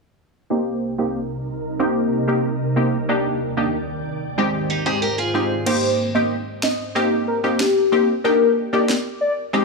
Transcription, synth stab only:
0.50 0.95 A#3 medium
0.50 0.95 C4 medium
0.50 0.95 D#4 medium
0.50 0.95 G4 loud
0.98 1.20 A#3 medium
0.98 1.20 C4 medium
0.98 1.20 D#4 medium
0.98 1.20 G4 medium
1.79 2.24 A#3 medium
1.79 2.24 C4 medium
1.79 2.24 D#4 medium
1.79 2.24 G4 loud
2.28 2.49 A#3 medium
2.28 2.49 C4 medium
2.28 2.49 D#4 medium
2.28 2.49 G4 medium
2.76 2.97 A#3 medium
2.76 2.97 C4 medium
2.76 2.98 D#4 medium
2.76 2.98 G4 medium
3.09 3.53 A#3 medium
3.09 3.53 D4 medium
3.09 3.53 D#4 medium
3.09 3.53 G4 loud
3.57 3.78 A#3 medium
3.57 3.78 D4 medium
3.57 3.78 D#4 medium
3.57 3.78 G4 medium
4.38 4.82 G#3 medium
4.38 4.82 C4 medium
4.38 4.82 D#4 medium
4.38 4.82 G4 loud
4.86 5.07 G#3 medium
4.86 5.07 C4 medium
4.86 5.07 D#4 medium
4.86 5.07 G4 medium
5.34 5.55 G#3 medium
5.34 5.55 C4 medium
5.34 5.56 D#4 medium
5.34 5.56 G4 medium
5.66 6.11 A#3 medium
5.66 6.11 C4 medium
5.66 6.11 D#4 medium
5.66 6.11 G4 loud
6.15 6.36 A#3 medium
6.15 6.36 C4 medium
6.15 6.36 D#4 medium
6.15 6.36 G4 medium
6.95 7.40 A#3 medium
6.95 7.40 C4 medium
6.95 7.40 D#4 medium
6.95 7.40 G4 loud
7.44 7.65 A#3 medium
7.44 7.65 C4 medium
7.44 7.65 D#4 medium
7.44 7.65 G4 medium
7.92 8.13 A#3 medium
7.92 8.13 C4 medium
7.92 8.13 D#4 medium
7.92 8.14 G4 medium
8.24 8.69 A#3 medium
8.24 8.69 D4 medium
8.24 8.69 D#4 medium
8.24 8.69 G4 loud
8.73 8.94 A#3 medium
8.73 8.94 D4 medium
8.73 8.94 D#4 medium
8.73 8.94 G4 medium
9.53 9.65 G#3 medium
9.53 9.65 C4 medium
9.53 9.65 D#4 medium
9.53 9.65 G4 loud

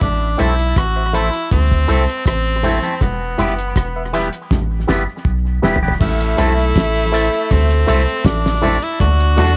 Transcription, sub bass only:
0.02 0.36 A1 loud
0.40 0.74 B1 medium
0.77 1.30 A1 loud
1.52 1.86 D2 medium
1.89 2.07 C2 medium
2.26 2.79 A1 medium
3.02 3.35 E1 loud
3.39 3.73 F#1 loud
3.77 4.29 E1 medium
4.52 4.85 A1 medium
4.89 5.07 G1 loud
5.26 5.60 B1 medium
5.64 5.97 E1 medium
6.01 6.35 A1 loud
6.39 6.73 B1 loud
6.76 7.29 A1 loud
7.51 7.85 D2 loud
7.89 8.06 C2 medium
8.25 8.78 A1 medium
9.01 9.40 D2 loud
9.39 9.57 E2 medium

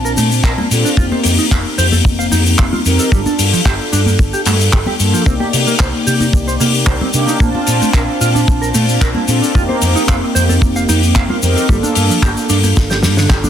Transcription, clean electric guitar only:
0.05 0.11 A#4 medium
0.17 0.28 A3 loud
0.44 0.51 A#4 medium
0.58 0.65 A#3 medium
0.85 0.89 D4 medium
0.98 1.05 F4 loud
1.12 1.18 C5 medium
1.38 1.45 D#4 medium
1.51 1.58 F5 medium
1.78 1.85 C5 loud
1.92 1.96 A4 medium
2.19 2.25 F5 medium
2.32 2.42 D#4 loud
2.59 2.66 F5 medium
2.72 2.79 F4 medium
2.99 3.03 A4 medium
3.12 3.19 G3 loud
3.26 3.33 D4 medium
3.53 3.59 F3 loud
3.65 3.73 G4 loud
3.92 4.00 D4 medium
4.06 4.10 A#3 medium
4.33 4.40 G4 medium
4.46 4.53 A3 medium
4.73 4.77 G4 medium
4.87 4.93 G4 medium
5.13 5.23 F3 medium
5.26 5.33 C4 medium
5.40 5.47 G4 medium
5.67 5.74 A#3 loud
5.80 5.87 C5 medium
6.07 6.14 G4 medium
6.21 6.25 D#4 medium
6.48 6.54 C5 medium
6.60 6.71 A#3 loud
6.87 6.94 C5 medium
7.01 7.08 C4 medium
7.28 7.32 D#4 medium
7.41 7.48 A#3 loud
7.55 7.61 F4 medium
7.82 7.88 A3 medium
7.94 8.01 A#4 loud
8.21 8.28 F4 loud
8.35 8.39 D4 medium
8.62 8.68 A#4 medium
8.74 8.85 A3 loud
9.01 9.08 A#4 medium
9.15 9.22 A#3 medium
9.42 9.46 D4 medium
9.55 9.62 F4 loud
9.69 9.75 C5 medium
9.96 10.02 D#4 loud
10.08 10.16 F5 loud
10.35 10.42 C5 loud
10.49 10.53 A4 medium
10.76 10.82 F5 medium
10.89 10.99 D#4 loud
11.15 11.23 F5 loud
11.30 11.36 F4 medium
11.56 11.60 A4 medium
11.69 11.76 G3 loud
11.83 11.90 D4 medium
12.10 12.16 F3 loud
12.23 12.30 G4 loud
12.49 12.56 D4 loud
12.63 12.67 A#3 medium
12.90 12.97 G4 medium
13.03 13.14 G3 medium
13.17 13.27 D3 loud
13.30 13.37 G4 medium
13.44 13.48 D4 medium

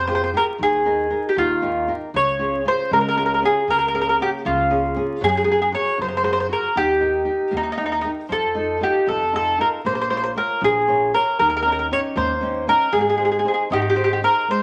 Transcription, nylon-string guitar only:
0.00 0.32 C3 medium
0.08 0.33 F4 medium
0.08 0.32 G4 soft
0.08 0.33 G#4 medium
0.34 0.54 F4 soft
0.34 0.54 G4 soft
0.34 0.55 G#4 soft
0.58 1.09 D#3 medium
0.85 1.09 D#4 soft
0.85 1.09 G#4 soft
0.85 1.09 A#4 soft
1.10 1.31 D#4 soft
1.10 1.31 G#4 soft
1.10 1.31 A#4 soft
1.36 1.87 D#3 medium
1.62 1.87 D#4 soft
1.62 1.87 G4 soft
1.62 1.88 A#4 medium
1.88 2.08 D#4 soft
1.88 2.09 G4 soft
1.88 2.09 A#4 soft
2.14 2.64 C#3 medium
2.39 2.63 C#4 soft
2.39 2.64 F4 soft
2.39 2.64 G#4 soft
2.65 3.06 C#4 soft
2.65 3.07 F4 soft
2.65 3.07 G#4 soft
2.91 3.41 G#3 medium
3.17 3.41 C#4 soft
3.17 3.41 F4 soft
3.17 3.42 G#4 medium
3.42 3.63 C#4 soft
3.42 3.63 F4 soft
3.42 3.63 G#4 medium
3.67 4.18 C#3 medium
3.94 4.18 A#3 soft
3.94 4.19 C#4 soft
3.94 4.19 G#4 medium
4.19 4.61 A#3 soft
4.19 4.61 C#4 soft
4.19 4.61 G#4 soft
4.45 4.95 C#3 medium
4.70 4.94 A#3 medium
4.70 4.95 C#4 soft
4.70 4.95 G#4 medium
4.95 5.16 A#3 soft
4.95 5.17 C#4 soft
4.95 5.17 G#4 medium
5.21 5.46 F#3 medium
5.46 5.70 F#4 soft
5.46 5.71 G#4 soft
5.46 5.71 A#4 soft
5.72 6.13 F#4 soft
5.72 6.14 G#4 soft
5.72 6.14 A#4 medium
5.98 6.48 C#3 medium
6.23 6.48 F#4 medium
6.23 6.48 G#4 soft
6.23 6.49 A#4 medium
6.49 6.70 F#4 soft
6.49 6.70 G#4 soft
6.49 6.70 A#4 soft
6.75 7.26 D#3 medium
7.00 7.24 D#4 soft
7.00 7.24 G4 soft
7.00 7.25 A#4 soft
7.25 7.67 D#4 soft
7.25 7.68 G4 soft
7.25 7.68 A#4 soft
7.51 8.02 A#3 medium
7.77 8.03 D#4 soft
7.77 8.03 G4 soft
7.77 8.03 A#4 medium
8.04 8.25 D#4 soft
8.04 8.25 G4 soft
8.04 8.25 A#4 soft
8.29 8.80 F3 medium
8.55 8.80 D#4 soft
8.55 8.80 F4 soft
8.55 8.80 A4 soft
8.81 9.23 D#4 soft
8.81 9.23 F4 soft
8.81 9.23 A4 soft
9.07 9.57 C3 medium
9.33 9.57 D#4 soft
9.33 9.58 F4 soft
9.33 9.58 A4 medium
9.58 9.79 D#4 soft
9.58 9.79 F4 soft
9.58 9.80 A4 soft
9.85 10.35 A#3 medium
10.10 10.35 F4 soft
10.10 10.35 A#4 soft
10.10 10.35 C#5 soft
10.36 10.77 F4 soft
10.36 10.78 A#4 soft
10.36 10.78 C#5 soft
10.61 11.12 F3 medium
10.88 11.12 F4 medium
10.88 11.13 A#4 soft
10.88 11.13 C#5 medium
11.13 11.34 F4 soft
11.13 11.35 A#4 soft
11.13 11.35 C#5 medium
11.39 11.89 D#3 medium
11.65 11.90 C#4 soft
11.65 11.90 D#4 soft
11.65 11.91 G4 medium
11.91 12.32 C#4 soft
11.91 12.33 D#4 soft
11.91 12.33 G4 medium
12.16 12.66 A#3 medium
12.41 12.66 C#4 medium
12.41 12.67 D#4 soft
12.41 12.67 G4 medium
12.67 12.88 C#4 soft
12.67 12.89 D#4 soft
12.67 12.88 G4 medium
12.93 13.43 G#3 soft
13.18 13.43 D#4 soft
13.18 13.43 G#4 soft
13.18 13.44 C5 soft
13.44 13.86 D#4 soft
13.44 13.86 G#4 soft
13.44 13.87 C5 soft
13.70 14.21 D#3 medium
13.95 14.21 D#4 soft
13.95 14.21 G#4 soft
13.95 14.22 C5 medium
14.22 14.43 D#4 soft
14.22 14.43 G#4 soft
14.22 14.44 C5 soft
14.48 14.63 G#3 medium

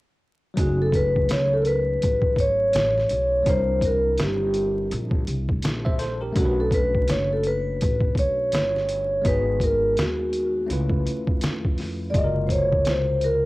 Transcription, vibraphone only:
0.59 0.81 F#4 medium
0.82 0.94 A4 medium
0.95 1.28 B4 medium
1.32 1.53 C#5 medium
1.53 1.61 A4 medium
1.62 1.67 A#4 medium
1.67 2.41 B4 loud
2.40 3.51 C#5 medium
3.49 3.85 C5 medium
3.85 4.18 A#4 medium
4.22 4.89 G4 medium
6.38 6.59 F#4 medium
6.60 6.72 A4 medium
6.74 7.10 B4 loud
7.10 7.29 C#5 loud
7.33 7.46 A4 medium
7.47 8.14 B4 loud
8.19 9.29 C#5 loud
9.27 9.60 B4 medium
9.64 9.96 A#4 medium
10.00 10.67 F#4 medium
12.10 12.15 D5 medium
12.17 12.47 D#5 medium
12.47 12.51 C5 medium
12.52 12.88 C#5 medium
12.89 13.24 C5 medium
13.24 13.46 A#4 medium

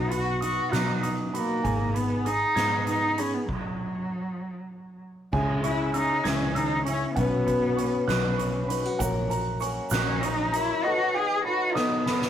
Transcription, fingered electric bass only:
0.00 0.60 B1 medium
0.73 1.52 B2 medium
1.64 2.44 G#1 medium
2.56 3.36 G#2 medium
5.33 6.12 C#2 medium
6.25 7.04 C#2 medium
7.17 7.96 B1 medium
8.08 8.87 B1 medium
9.00 9.79 A#1 medium
9.91 10.71 A#1 medium

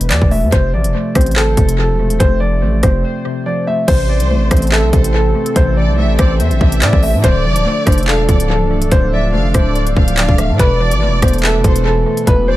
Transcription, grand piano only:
0.10 0.28 D5 medium
0.31 0.49 E5 medium
0.52 0.70 C5 loud
0.74 1.13 D5 medium
1.15 1.33 C5 medium
1.36 1.76 A4 loud
1.79 2.18 A4 medium
2.20 2.37 C5 loud
2.40 2.80 D5 medium
2.83 3.42 C5 medium
3.46 3.64 D5 medium
3.67 3.85 E5 medium
3.88 4.05 C5 loud
4.09 4.48 D5 medium
4.51 4.69 C5 medium
4.72 5.11 A4 medium
5.14 5.54 A4 medium
5.56 5.74 C5 loud
5.77 6.16 D5 medium
6.19 6.78 C5 medium
6.82 7.00 D5 medium
7.03 7.21 E5 medium
7.24 7.42 C5 loud
7.45 7.84 D5 medium
7.86 8.04 C5 medium
8.08 8.47 A4 medium
8.50 8.89 A4 medium
8.91 9.09 C5 loud
9.14 9.52 D5 medium
9.54 10.13 C5 medium
10.17 10.35 D5 medium
10.39 10.56 E5 medium
10.60 10.77 B4 loud
10.81 11.20 D5 medium
11.22 11.40 C5 medium
11.44 11.83 A4 medium
11.85 12.25 A4 medium
12.27 12.45 B4 loud
12.48 12.57 C5 medium

